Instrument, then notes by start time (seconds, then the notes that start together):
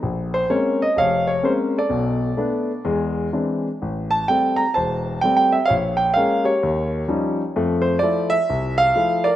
grand piano
0.03 A#1
0.34 C5
0.49 G#3 A#3 C4 C#4 C#5
0.82 D#5
0.96 F1 C#5 F5
1.27 C#5
1.43 G#3 A#3 C4 C#4 C5
1.78 A4 D5
1.89 B1 B2
2.37 A3 B3 D4
2.85 E2 G#3
3.33 E3 G#3 C4 D4
3.82 A1
4.11 A5
4.28 G3 A3 C4 G5
4.56 A#5
4.74 E1 C5 A5
5.21 G3 A3 C4 G5
5.37 G5
5.52 E5
5.66 C#5 F5
5.70 A#1
5.97 G5
6.14 G#3 A#3 C#4 F5
6.44 G4 C#5
6.63 D#2
7.08 F3 G3 C#4 D#4
7.56 F2 A3
7.82 C5
7.99 F3 D5
8.03 A3 E4
8.30 E5
8.50 C2
8.78 F5
8.95 F3 A3 E4
9.24 A#4 D5